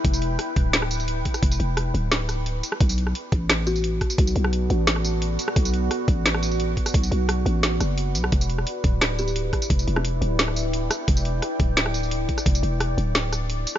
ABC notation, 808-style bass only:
X:1
M:4/4
L:1/8
Q:1/4=174
K:Em
V:1 name="808-style bass" clef=bass
E,,,2 z D,,,4 z | E,,, E,,,2 D,,,4 z | B,,,2 z A,,,4 z | B,,, B,,,2 A,,,4 z |
B,,,2 z A,,,4 z | B,,, B,,,2 A,,,2 F,,,2 B,,, | E,,,2 z D,,,4 z | E,,, E,,,2 D,,,4 z |
E,,,2 z D,,,4 z | E,,, E,,,2 D,,,4 z |]